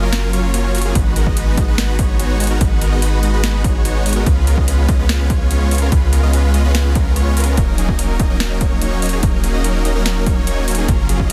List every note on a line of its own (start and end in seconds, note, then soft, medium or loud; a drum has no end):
0.00 0.93 F#1 medium
0.00 0.10 F#3 loud
0.00 0.10 A#3 medium
0.00 0.10 C#4 medium
0.00 0.10 F4 medium
0.00 0.10 A#4 loud
0.13 0.31 F#3 medium
0.13 0.31 A#3 medium
0.13 0.31 C#4 medium
0.13 0.31 F4 medium
0.13 0.31 A#4 medium
0.13 snare loud
0.13 closed hi-hat medium
0.33 0.52 F#3 medium
0.33 0.52 A#3 medium
0.33 0.52 C#4 medium
0.33 0.52 F4 medium
0.33 0.52 C#5 medium
0.33 closed hi-hat medium
0.54 0.72 F#3 medium
0.54 0.72 A#3 medium
0.54 0.72 C#4 medium
0.54 0.72 F4 medium
0.54 0.72 C#5 medium
0.54 closed hi-hat medium
0.75 0.83 F#3 medium
0.75 0.83 A#3 medium
0.75 0.83 C#4 medium
0.75 0.83 F4 medium
0.75 0.83 C#5 medium
0.75 closed hi-hat medium
0.75 open hi-hat medium
0.82 0.93 F#3 loud
0.82 0.93 A#3 medium
0.82 0.93 C#4 medium
0.82 0.93 F4 medium
0.82 0.93 G#4 loud
0.82 closed hi-hat medium
0.95 2.59 G#1 medium
0.95 1.14 G#3 medium
0.95 1.14 B3 medium
0.95 1.14 B4 medium
0.95 kick loud
0.95 closed hi-hat medium
1.16 1.25 G#3 medium
1.16 1.25 B3 medium
1.16 1.25 D#4 medium
1.16 1.25 F#4 medium
1.16 1.25 A#4 medium
1.16 closed hi-hat medium
1.27 1.35 G#3 medium
1.27 1.35 B3 medium
1.27 1.35 D#4 medium
1.27 1.35 F#4 medium
1.27 1.35 D#5 medium
1.27 kick medium
1.37 1.55 G#3 medium
1.37 1.55 B3 medium
1.37 1.55 D#4 medium
1.37 1.55 F#4 medium
1.37 1.55 B4 loud
1.37 closed hi-hat medium
1.58 1.66 G#3 medium
1.58 1.66 B3 medium
1.58 1.66 D#4 medium
1.58 1.66 F#4 medium
1.58 1.66 D#5 loud
1.58 kick loud
1.58 closed hi-hat medium
1.68 1.76 G#3 medium
1.68 1.76 B3 medium
1.68 1.76 D#4 medium
1.68 1.76 F#4 loud
1.68 1.76 B4 loud
1.78 1.97 G#3 medium
1.78 1.97 B3 medium
1.78 1.97 D#4 medium
1.78 1.97 F#4 medium
1.78 1.97 B4 medium
1.78 snare loud
1.78 closed hi-hat medium
1.99 2.17 G#3 medium
1.99 2.17 B3 medium
1.99 2.17 D#4 medium
1.99 2.17 F#4 medium
1.99 2.17 C#5 medium
1.99 kick loud
1.99 closed hi-hat medium
2.20 2.38 G#3 medium
2.20 2.38 B3 medium
2.20 2.38 D#4 medium
2.20 2.38 F#4 medium
2.20 2.38 C#5 medium
2.20 closed hi-hat medium
2.40 2.48 G#3 medium
2.40 2.48 B3 medium
2.40 2.48 D#4 medium
2.40 2.48 F#4 medium
2.40 2.48 C#5 medium
2.40 closed hi-hat medium
2.40 open hi-hat medium
2.47 2.59 G#3 loud
2.47 2.59 B3 medium
2.47 2.59 D#4 medium
2.47 2.59 F#4 medium
2.47 2.59 A#4 loud
2.47 closed hi-hat medium
2.61 4.24 G#1 medium
2.61 2.79 B3 medium
2.61 2.79 D#4 medium
2.61 2.79 B4 medium
2.61 kick loud
2.61 closed hi-hat medium
2.82 2.91 G#3 medium
2.82 2.91 B3 medium
2.82 2.91 D#4 medium
2.82 2.91 F#4 medium
2.82 2.91 A#4 medium
2.82 closed hi-hat medium
2.92 3.01 G#3 medium
2.92 3.01 B3 medium
2.92 3.01 D#4 medium
2.92 3.01 F#4 medium
2.92 3.01 D#5 loud
3.02 3.21 G#3 medium
3.02 3.21 B3 medium
3.02 3.21 D#4 medium
3.02 3.21 F#4 medium
3.02 3.21 B4 loud
3.02 closed hi-hat medium
3.23 3.31 G#3 medium
3.23 3.31 B3 medium
3.23 3.31 D#4 medium
3.23 3.31 F#4 medium
3.23 3.31 D#5 loud
3.23 closed hi-hat medium
3.34 3.41 G#3 loud
3.34 3.41 B3 medium
3.34 3.41 D#4 medium
3.34 3.41 F#4 medium
3.34 3.41 B4 loud
3.44 3.62 G#3 medium
3.44 3.62 B3 medium
3.44 3.62 D#4 medium
3.44 3.62 F#4 medium
3.44 3.62 B4 medium
3.44 snare loud
3.44 closed hi-hat medium
3.64 3.83 G#3 medium
3.64 3.83 B3 medium
3.64 3.83 D#4 medium
3.64 3.83 F#4 medium
3.64 3.83 C#5 medium
3.64 kick loud
3.64 closed hi-hat medium
3.85 4.03 G#3 medium
3.85 4.03 B3 medium
3.85 4.03 D#4 medium
3.85 4.03 F#4 medium
3.85 4.03 C#5 loud
3.85 closed hi-hat medium
4.06 4.14 G#3 medium
4.06 4.14 B3 medium
4.06 4.14 D#4 medium
4.06 4.14 F#4 medium
4.06 4.14 C#5 medium
4.06 closed hi-hat medium
4.06 open hi-hat medium
4.13 4.24 G#3 medium
4.13 4.24 B3 medium
4.13 4.24 D#4 medium
4.13 4.24 F#4 medium
4.13 4.24 A#4 loud
4.13 closed hi-hat medium
4.26 5.90 C#2 medium
4.26 4.45 G#3 medium
4.26 4.45 B3 medium
4.26 4.45 C#4 medium
4.26 4.45 F4 medium
4.26 4.45 B4 medium
4.26 kick loud
4.26 closed hi-hat medium
4.47 4.56 G#3 medium
4.47 4.56 B3 medium
4.47 4.56 C#4 medium
4.47 4.56 F4 medium
4.47 4.56 A#4 medium
4.47 closed hi-hat medium
4.58 4.66 G#3 medium
4.58 4.66 B3 medium
4.58 4.66 C#4 medium
4.58 4.66 F4 medium
4.58 4.66 D#5 medium
4.58 kick medium
4.68 4.86 G#3 medium
4.68 4.86 B3 medium
4.68 4.86 C#4 medium
4.68 4.86 F4 medium
4.68 4.86 B4 loud
4.68 closed hi-hat medium
4.89 4.97 G#3 loud
4.89 4.97 B3 medium
4.89 4.97 C#4 medium
4.89 4.97 F4 medium
4.89 4.97 D#5 loud
4.89 kick loud
4.89 closed hi-hat medium
4.99 5.07 G#3 loud
4.99 5.07 B3 medium
4.99 5.07 C#4 medium
4.99 5.07 F4 medium
4.99 5.07 B4 loud
5.09 5.28 G#3 medium
5.09 5.28 B3 medium
5.09 5.28 C#4 medium
5.09 5.28 F4 medium
5.09 5.28 B4 medium
5.09 snare loud
5.09 closed hi-hat medium
5.30 5.48 G#3 medium
5.30 5.48 B3 medium
5.30 5.48 C#4 medium
5.30 5.48 F4 medium
5.30 5.48 C#5 medium
5.30 kick loud
5.30 closed hi-hat medium
5.51 5.69 G#3 medium
5.51 5.69 B3 medium
5.51 5.69 C#4 medium
5.51 5.69 F4 medium
5.51 5.69 C#5 medium
5.51 closed hi-hat medium
5.71 5.79 G#3 medium
5.71 5.79 B3 medium
5.71 5.79 C#4 medium
5.71 5.79 F4 medium
5.71 5.79 C#5 medium
5.71 closed hi-hat medium
5.71 open hi-hat medium
5.78 5.90 G#3 loud
5.78 5.90 B3 medium
5.78 5.90 C#4 medium
5.78 5.90 F4 medium
5.78 5.90 A#4 loud
5.78 closed hi-hat medium
5.92 7.55 C#2 medium
5.92 6.10 G#3 medium
5.92 6.10 B3 medium
5.92 6.10 C#4 medium
5.92 6.10 F4 medium
5.92 6.10 B4 medium
5.92 kick loud
5.92 closed hi-hat medium
6.13 6.22 G#3 medium
6.13 6.22 B3 medium
6.13 6.22 C#4 medium
6.13 6.22 F4 medium
6.13 6.22 A#4 medium
6.13 closed hi-hat medium
6.23 6.32 G#3 medium
6.23 6.32 B3 medium
6.23 6.32 C#4 medium
6.23 6.32 F4 medium
6.23 6.32 D#5 medium
6.33 6.52 G#3 medium
6.33 6.52 B3 medium
6.33 6.52 C#4 medium
6.33 6.52 F4 medium
6.33 6.52 B4 loud
6.33 closed hi-hat medium
6.54 6.62 G#3 loud
6.54 6.62 B3 medium
6.54 6.62 C#4 medium
6.54 6.62 F4 medium
6.54 6.62 D#5 loud
6.54 closed hi-hat medium
6.65 6.72 G#3 loud
6.65 6.72 B3 medium
6.65 6.72 C#4 medium
6.65 6.72 F4 medium
6.65 6.72 B4 loud
6.75 6.93 G#3 medium
6.75 6.93 B3 medium
6.75 6.93 C#4 medium
6.75 6.93 F4 medium
6.75 6.93 B4 medium
6.75 snare loud
6.75 closed hi-hat medium
6.95 7.13 G#3 medium
6.95 7.13 B3 medium
6.95 7.13 C#4 medium
6.95 7.13 F4 medium
6.95 7.13 A#4 medium
6.95 kick loud
6.95 closed hi-hat medium
7.16 7.34 G#3 medium
7.16 7.34 B3 medium
7.16 7.34 C#4 medium
7.16 7.34 F4 medium
7.16 7.34 C#5 medium
7.16 closed hi-hat medium
7.37 7.55 G#3 medium
7.37 7.55 B3 medium
7.37 7.55 C#4 medium
7.37 7.55 F4 medium
7.37 7.55 A#4 medium
7.37 closed hi-hat medium
7.37 open hi-hat medium
7.44 closed hi-hat medium
7.57 9.21 D#1 medium
7.57 7.76 F#3 medium
7.57 kick loud
7.57 closed hi-hat medium
7.78 7.87 F#3 medium
7.78 7.87 A#3 medium
7.78 7.87 C#4 medium
7.78 7.87 D#4 medium
7.78 7.87 G#4 medium
7.78 closed hi-hat medium
7.89 7.97 F#3 medium
7.89 7.97 A#3 medium
7.89 7.97 C#4 medium
7.89 7.97 D#4 medium
7.89 7.97 D#5 loud
7.89 kick medium
7.99 8.17 F#3 medium
7.99 8.17 A#3 medium
7.99 8.17 C#4 medium
7.99 8.17 D#4 medium
7.99 8.17 A#4 medium
7.99 closed hi-hat medium
8.20 8.28 F#3 loud
8.20 8.28 A#3 medium
8.20 8.28 C#4 medium
8.20 8.28 D#4 medium
8.20 8.28 D#5 loud
8.20 kick loud
8.20 closed hi-hat medium
8.30 8.38 F#3 loud
8.30 8.38 A#3 medium
8.30 8.38 C#4 medium
8.30 8.38 D#4 medium
8.30 8.38 A#4 loud
8.40 8.59 F#3 medium
8.40 8.59 A#3 medium
8.40 8.59 C#4 medium
8.40 8.59 D#4 medium
8.40 8.59 A#4 medium
8.40 snare loud
8.40 closed hi-hat medium
8.61 8.79 F#3 medium
8.61 8.79 A#3 medium
8.61 8.79 C#4 medium
8.61 8.79 D#4 medium
8.61 8.79 C#5 medium
8.61 kick loud
8.61 closed hi-hat medium
8.82 9.00 F#3 medium
8.82 9.00 A#3 medium
8.82 9.00 C#4 medium
8.82 9.00 D#4 medium
8.82 9.00 C#5 medium
8.82 closed hi-hat medium
9.02 9.10 F#3 medium
9.02 9.10 A#3 medium
9.02 9.10 C#4 medium
9.02 9.10 D#4 medium
9.02 9.10 C#5 medium
9.02 closed hi-hat medium
9.02 open hi-hat medium
9.09 9.21 F#3 loud
9.09 9.21 A#3 medium
9.09 9.21 C#4 medium
9.09 9.21 D#4 medium
9.09 9.21 G#4 loud
9.09 closed hi-hat medium
9.23 10.87 D#1 medium
9.23 9.41 F#3 medium
9.23 9.41 A#3 medium
9.23 9.41 C#4 medium
9.23 9.41 D#4 medium
9.23 kick loud
9.23 closed hi-hat medium
9.44 9.53 F#3 medium
9.44 9.53 A#3 medium
9.44 9.53 C#4 medium
9.44 9.53 D#4 medium
9.44 9.53 G#4 medium
9.44 closed hi-hat medium
9.54 9.63 F#3 medium
9.54 9.63 A#3 medium
9.54 9.63 C#4 medium
9.54 9.63 D#4 medium
9.54 9.63 D#5 medium
9.64 9.83 F#3 medium
9.64 9.83 A#3 medium
9.64 9.83 C#4 medium
9.64 9.83 D#4 medium
9.64 9.83 A#4 loud
9.64 closed hi-hat medium
9.85 9.93 F#3 loud
9.85 9.93 A#3 medium
9.85 9.93 C#4 medium
9.85 9.93 D#4 medium
9.85 9.93 D#5 loud
9.85 closed hi-hat medium
9.96 10.03 F#3 loud
9.96 10.03 A#3 medium
9.96 10.03 C#4 medium
9.96 10.03 D#4 medium
9.96 10.03 A#4 loud
10.06 10.24 F#3 medium
10.06 10.24 A#3 medium
10.06 10.24 C#4 medium
10.06 10.24 D#4 medium
10.06 10.24 A#4 medium
10.06 snare loud
10.06 closed hi-hat medium
10.26 10.45 F#3 medium
10.26 10.45 A#3 medium
10.26 10.45 C#4 medium
10.26 10.45 D#4 medium
10.26 10.45 C#5 medium
10.26 kick loud
10.26 closed hi-hat medium
10.47 10.65 F#3 medium
10.47 10.65 A#3 medium
10.47 10.66 C#4 medium
10.47 10.65 D#4 medium
10.47 10.65 C#5 medium
10.47 closed hi-hat medium
10.68 10.76 F#3 medium
10.68 10.76 A#3 medium
10.68 10.76 C#4 medium
10.68 10.76 D#4 medium
10.68 10.76 C#5 medium
10.68 closed hi-hat medium
10.68 open hi-hat loud
10.75 10.86 F#3 loud
10.75 10.86 A#3 medium
10.75 10.86 C#4 medium
10.75 10.86 D#4 medium
10.75 10.86 G#4 loud
10.75 closed hi-hat medium
10.88 11.33 F#1 medium
10.88 11.07 F#3 medium
10.88 11.07 A#3 medium
10.88 11.07 C#4 medium
10.88 11.07 F4 medium
10.88 11.07 A#4 medium
10.88 kick loud
10.88 closed hi-hat medium
11.09 11.18 F#3 medium
11.09 11.18 A#3 medium
11.09 11.18 C#4 medium
11.09 11.18 F4 medium
11.09 11.18 G#4 medium
11.09 closed hi-hat medium
11.20 11.28 F#3 medium
11.20 11.28 A#3 medium
11.20 11.28 C#4 medium
11.20 11.28 F4 medium
11.20 11.28 D#5 medium
11.20 kick medium